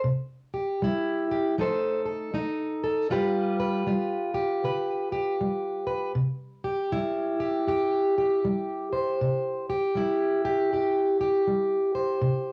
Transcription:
0.04 C3
0.54 G4
0.82 G3 E4
1.31 G4
1.58 F3 A3 D#4 A4 C5
2.06 A4
2.34 A3 D#4
2.84 A4
3.10 G2 G3 F4 G4 B4
3.60 B4
3.87 G3 F4
4.34 G4
4.64 D3 B4
5.12 G4
5.41 G3
5.87 B4
6.15 C3
6.64 G4
6.92 G3 E4
7.40 G4
7.67 G2 G4
8.18 G4
8.45 G3
8.93 C5
9.21 C3
9.70 G4
9.95 G3 E4
10.45 G4
10.73 G2 G4
11.21 G4
11.47 G3
11.95 C5
12.22 C3

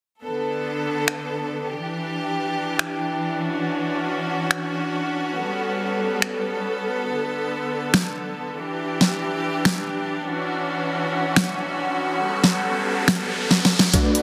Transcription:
0.22 D3 B3 A4
1.08 finger snap
1.72 E3 D4 G4
2.79 finger snap
3.44 C#4 F#4
4.51 finger snap
5.36 G3 B3 A4
6.22 finger snap
7.08 D3
7.94 finger snap, snare
8.58 E3 D4 G4
9.01 snare
9.65 finger snap, snare
10.29 E3 C#4 F#4
10.51 riser
11.36 finger snap, snare
12.22 G3 B3 A4
12.44 snare
13.08 finger snap, snare
13.51 snare
13.65 snare
13.79 snare
13.93 A3 D4 F#4 B4 D5, kick, snare, closed hi-hat, riser
14.15 closed hi-hat

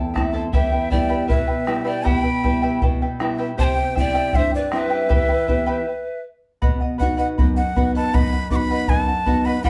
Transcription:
Already playing: E2 E4 A4 G5 A5
0.14 A3 C4 E4 A4 E5 A5, bombo rim, bombo low
0.33 E4 A4 C5 E5 A5
0.53 E2 E4 G4 B4 E5 G5, bombo low
0.72 E4 B4 G5
0.90 G3 B3 E4 B4 D5 E5 G5, bombo low
1.09 E4 G4 B4 E5 G5
1.27 B2 E4 B4 E5 G5, bombo low
1.47 E4 B4 G5
1.66 G3 B3 E4 B4 E5 G5, bombo rim
1.84 E4 G4 B4 D5 E5 G5
2.04 B2 E4 G4 B4 E5 G5 B5, bombo low
2.22 E4 B4 G5
2.43 G3 B3 E4 B4 E5 G5, bombo low
2.62 E4 G4 B4 E5 G5
2.82 B2 E4 B4 E5 G5, bombo low
3.02 E4 B4 G5
3.20 G3 B3 E4 B4 E5 G5, bombo rim
3.38 E4 G4 B4 E5 G5
3.57 C3 E4 G4 C5 E5 G5 A5, bombo low
3.63 G5
3.76 E4 C5 G5
3.95 G3 C4 E4 C5 E5 G5, bombo low
4.00 D5
4.14 E4 G4 C5 E5 G5
4.33 G2 E4 C5 E5 G5, bombo low
4.37 C5
4.52 E4 C5 D5 G5
4.57 B4
4.71 G3 C4 E4 C5 E5 G5, bombo rim
4.75 B4
4.90 E4 G4 C5 E5 G5
5.09 E3 E4 G4 B4 E5 G5, bombo low
5.29 E4 B4 G5
5.48 B3 E4 G4 B4 E5 G5, bombo low
5.66 E4 G4 B4 E5 G5
6.62 B2 B4 D#5 F#5, bombo low
6.81 D#5 F#5
6.98 B3 B4 D#5 F#5, bombo low
7.02 D#4 F#4
7.17 B4 D#5 F#5
7.38 F#2 B4 D#5 F#5, bombo low
7.56 D#5 F#5
7.76 B3 D#4 F#4 B4 D#5 F#5, bombo low
7.95 B4 D#5 F#5 A5
8.13 F#2 B4 D#5 F#5 B5, bombo low
8.33 D#5 F#5
8.50 B3 D#4 F#4 B4 D#5 F#5 D6, bombo low
8.56 B5
8.70 B4 D#5 F#5
8.88 F#2 B4 D#5 F#5 G#5, bombo low
9.00 A5
9.07 D#5 F#5
9.26 B3 D#4 F#4 B4 D#5 F#5, bombo low
9.45 B4 D#5 F#5 B5
9.64 E3 E4 G4 E5 G5 B5, bombo low

